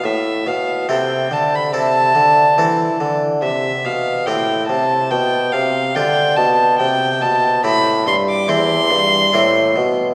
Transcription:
<<
  \new Staff \with { instrumentName = "Violin" } { \time 4/4 \key c \major \tempo 4 = 71 e''8 f''8 g''8 a''16 b''16 a''4.~ a''16 r16 | e''8 f''8 g''8 a''8 g''8 f''8 g''8 a''8 | g''8 a''8 b''8 c'''16 d'''16 c'''4.~ c'''16 r16 | }
  \new Staff \with { instrumentName = "Harpsichord" } { \time 4/4 \key c \major r4 <c' e' a'>4 <c' e' a'>4 <c' e' a'>4 | r4 <c' e' g'>4 r4 <d' f' g'>4 | r4 <c' e' g'>4 <c' e' g'>4 <c' e' g'>4 | }
  \new Staff \with { instrumentName = "Harpsichord" } { \clef bass \time 4/4 \key c \major a,8 b,8 c8 d8 c8 d8 e8 d8 | c8 b,8 a,8 c8 b,8 c8 d8 b,8 | c8 b,8 a,8 g,8 e,8 g,8 a,8 b,8 | }
  \new Staff \with { instrumentName = "Bassoon" } { \clef bass \time 4/4 \key c \major a,8 b,8 c8 d8 c8 d8 e8 d8 | c8 b,8 a,8 c8 b,8 c8 d8 b,8 | c8 b,8 a,8 g,8 e,8 g,8 a,8 b,8 | }
>>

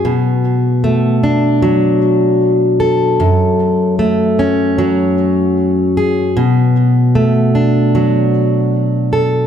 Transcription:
\new Staff \with { instrumentName = "Steel-string acoustic guitar" } { \time 4/4 \key b \dorian \tempo 4 = 76 b,4 a8 d'8 fis4. a'8 | fis,4 a8 cis'8 fis4. gis'8 | b,4 a8 d'8 fis4. a'8 | }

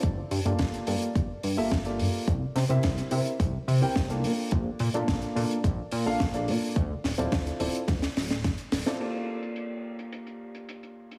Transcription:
<<
  \new Staff \with { instrumentName = "Grand piano" } { \time 4/4 \key g \dorian \tempo 4 = 107 r8. <bes f' g' a' d''>8. <bes f' g' a' d''>16 r4 <bes f' g' a' e''>16 r16 <bes f' g' a' d''>8. | r8. <c' e' g' bes' e''>8. <c' e' g' bes' e''>16 r4 <c' e' g' bes' g''>16 r16 <bes d' f' a' d''>8.~ | <bes d' f' a' d''>8. <bes d' f' a' d''>8. <bes d' f' a' d''>16 r4 <bes d' f' a' f''>16 r16 <bes d' f' a' d''>8. | r8. <c' e' f' a' d''>8. <c' e' f' a' d''>16 r2 <c' e' f' a' d''>16 |
<bes f' g' a' d''>1 | }
  \new Staff \with { instrumentName = "Analog synth bass" } { \clef bass \time 4/4 \key g \dorian g,,16 r16 g,16 g,16 g,,16 r16 g,16 r16 g,,16 r16 g,16 g,,16 g,,8 g,16 r16 | c,16 r16 c16 c16 c,16 r16 c16 r16 c,16 r16 c16 c,16 c,8 bes,16 r16 | bes,,16 r16 bes,16 bes,16 bes,,16 r16 bes,16 r16 bes,,16 r16 bes,16 bes,,16 bes,,8 bes,16 r16 | d,16 r16 d,,16 d,,16 d,16 r16 d,,16 r16 d,16 r16 d,,8 d,16 r16 d,,16 r16 |
r1 | }
  \new DrumStaff \with { instrumentName = "Drums" } \drummode { \time 4/4 <hh bd>8 hho16 hh16 <hh bd sn>16 hh16 hho16 hh16 <hh bd>8 hho8 <hh bd sn>16 hh16 hho8 | <hh bd>8 <hho sn>16 hh16 <hh bd sn>16 hh16 hho16 hh16 <hh bd>8 hho8 <hh bd sn>16 hh16 hho8 | <hh bd>8 hho16 hh16 <hh bd sn>16 hh16 hho16 hh16 <hh bd>8 hho8 <hh bd sn>16 hh16 hho8 | <hh bd>8 <hho sn>16 hh16 <hh bd sn>16 hh16 hho16 hh16 <hh bd sn>16 <hh sn>16 <hho sn>16 <hh sn>16 <hh bd sn>16 hh16 <hho sn>16 <hh sn>16 |
<cymc hh>8. hh16 hh8. hh16 hh16 hh8 hh16 hh16 hh8 hh16 | }
>>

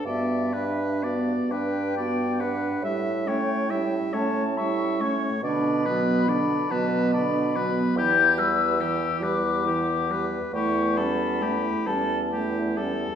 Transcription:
<<
  \new Staff \with { instrumentName = "Flute" } { \time 6/8 \key a \mixolydian \tempo 4. = 46 e''4 d''8 g''4 fis''8 | e''8 g''8 r8 a''8 cis'''4 | b''4. a''8 b''4 | g'''8 e'''4 d'''4 r8 |
cis'''8 b''4 a''8 r4 | }
  \new Staff \with { instrumentName = "Oboe" } { \time 6/8 \key a \mixolydian d''8 b'8 d''8 b'8 d''8 b'8 | e''8 cis''8 e''8 cis''8 e''8 cis''8 | d''8 b'8 d''8 b'8 d''8 b'8 | g'8 b'8 g'8 b'8 g'8 b'8 |
g'8 a'8 g'8 a'8 g'8 a'8 | }
  \new Staff \with { instrumentName = "Clarinet" } { \time 6/8 \key a \mixolydian fis'8 g'8 fis'8 g'8 fis'8 g'8 | e'8 cis'8 e'8 cis'8 e'8 cis'8 | d'8 b8 d'8 b8 d'8 b8 | e'8 g'8 e'8 g'8 e'8 g'8 |
e'8 cis'8 e'8 cis'8 e'8 cis'8 | }
  \new Staff \with { instrumentName = "French horn" } { \clef bass \time 6/8 \key a \mixolydian b8 d'8 b8 d'8 b8 d'8 | g8 a8 g8 a8 g8 a8 | d8 fis8 d8 fis8 d8 fis8 | e8 g8 e8 g8 e8 g8 |
a8 g8 a8 g8 a8 g8 | }
  \new Staff \with { instrumentName = "Bassoon" } { \clef bass \time 6/8 \key a \mixolydian g,4. g,4. | a,4. a,4. | b,4. b,4. | e,4. e,4. |
e,4. e,4. | }
>>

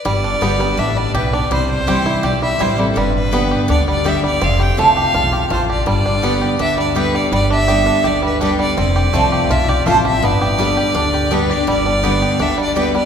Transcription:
<<
  \new Staff \with { instrumentName = "Fiddle" } { \time 4/4 \key g \mixolydian \tempo 4 = 165 d''2 e''8 d''8 b'8 d''8 | c''8 c''4. d''8 e''8 c''8 a'16. a'32 | b'8 b'4. d''8 d''8 e''8 d''8 | f''8 g''8 f''2 c''8 d''8 |
d''2 e''8 d''8 b'8 d''8 | d''8 e''4. d''8 b'8 b'8 d''8 | d''2 e''8 d''8 c''8 e''8 | d''2. b'8 d''8 |
d''2 e''8 d''8 b'8 d''8 | }
  \new Staff \with { instrumentName = "Mandolin" } { \time 4/4 \key g \mixolydian r4 <b g' d'' g''>16 r4. r16 <b g' d'' g''>16 r8. | r4 <c' e' c'' g''>16 r4. r16 <c' e' c'' g''>16 r8. | r4 <b g' d'' g''>16 r4. r16 <b g' d'' g''>16 r8. | r4 <a f' c'' a''>16 r4. r16 <a f' c'' a''>16 r8. |
r4 <b g' d'' g''>16 r4. r16 <b g' d'' g''>16 r8. | r4 <b g' d'' g''>16 r4. r16 <b g' d'' g''>16 r8. | r4 <a f' c'' a''>16 r4. r16 <a f' c'' a''>16 r8. | r4 <b g' d'' g''>16 r4. r16 <b g' d'' g''>16 r8. |
r4 <b g' d'' g''>16 r4. r16 <b g' d'' g''>16 r8. | }
  \new Staff \with { instrumentName = "Five-string banjo" } { \time 4/4 \key g \mixolydian g8 d'8 b8 g8 d'8 g8 g'8 d'8 | g4 g'8 e'8 g'8 g8 e'8 g8 | g4 b8 g'8 d'8 g8 g'8 g8 | c'8 g'8 a8 g'8 f'8 g'8 f'8 g'8 |
g8 d'8 b8 g'8 d'8 g8 g'8 g8 | g8 d'8 g'8 d'8 g'8 g8 d'8 g8 | c'8 g'8 a8 g'8 f'8 g'8 f'8 g'8 | b8 g'8 g8 g'8 d'8 g'8 d'8 g'8 |
g8 d'8 b8 g'8 d'8 g8 g'8 g8 | }
  \new Staff \with { instrumentName = "Resonator guitar played with a steel bar" } { \time 4/4 \key g \mixolydian r1 | r1 | r1 | r1 |
r1 | r1 | r1 | r2. b8 d'8 |
d'2 g'8 d'8 b8 d'8 | }
  \new Staff \with { instrumentName = "Steel-string acoustic guitar" } { \clef bass \time 4/4 \key g \mixolydian << { r4 <d g b g'>8 <b g'>8 r2 | r4 <e g c' e'>4 r4 <e g c' e'>8 <c' e'>8 | r4 <d g b g'>4 r4 <d g b g'>4 | r4 <f a c' f'>4 r2 |
r4 <d g b g'>8 <b g'>8 r4 <d g b g'>4 | r4 <d g b g'>4 r4 <d g b g'>4 | r4 <f a c' f'>4 r4 <f a c' f'>8 <c' f'>8 | r4 <d g b g'>4 r4 <d g b g'>8 <b g'>8 |
r4 <d g b g'>4 r4 <d g b g'>8 <b g'>8 | } \\ { g,2 a,4 b,4 | c2 g,2 | g,2 d2 | f,2 e,4 f,4 |
g,2 d2 | g,2 d2 | f,2 c2 | g,2 d2 |
g,2 d2 | } >> }
  \new Staff \with { instrumentName = "Upright bass" } { \clef bass \time 4/4 \key g \mixolydian g,,4 g,,4 a,,4 b,,4 | c,4 c,4 b,,4 a,,4 | g,,2 d,2 | f,,4 c,4 b,,4 a,,4 |
g,,2 d,2 | g,,2 d,2 | f,,4 c,4 b,,4 a,,4 | g,,2 d,2 |
g,,2 d,2 | }
>>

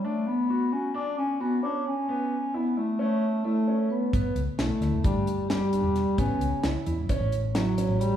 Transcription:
<<
  \new Staff \with { instrumentName = "Vibraphone" } { \time 9/8 \key a \mixolydian \tempo 4. = 88 r1 r8 | r2. a'4 b'8~ | b'8 r8 a'4 g'4 r4. | cis''4 r2 fis'4 g'8 | }
  \new Staff \with { instrumentName = "Grand piano" } { \time 9/8 \key a \mixolydian d'4 fis'8 fis'8 d'4 fis'8 cis'4 | b4 e'8 e'8 cis'4 e'8 cis'4 | b4 e'8 e'8 d'4 g'8 d'4 | b4 e'8 e'8 cis'4 e'8 cis'4 | }
  \new Staff \with { instrumentName = "Bass clarinet" } { \time 9/8 \key a \mixolydian a8 b4 cis'8 d'8 cis'8 b8 d'8 cis'8~ | cis'4 b8 a8 a4 a4 b8~ | b8 r8 a4 g4 g4. | cis'4 r2 fis4 g8 | }
  \new Staff \with { instrumentName = "Fingered electric bass" } { \clef bass \time 9/8 \key a \mixolydian r1 r8 | r1 r8 | g,,16 r16 cis,16 r16 b,,16 r16 d,16 e,,16 r16 g,,4. e,,8 r16 | a,,16 r16 cis,16 r16 cis,16 r16 e,16 fis,,16 r16 a,,4. a,,8 r16 | }
  \new DrumStaff \with { instrumentName = "Drums" } \drummode { \time 9/8 r4 r4 r4 r4. | r4 r4 r4 r4. | <hh bd>8 hh8 <hh sn>8 <hh sn>8 <hh bd>8 hh8 <hh sn>8 hh8 <hh sn>8 | <hh bd>8 hh8 <hh sn>8 hh8 <hh bd>8 hh8 <hh sn>8 <hh sn>8 hh8 | }
>>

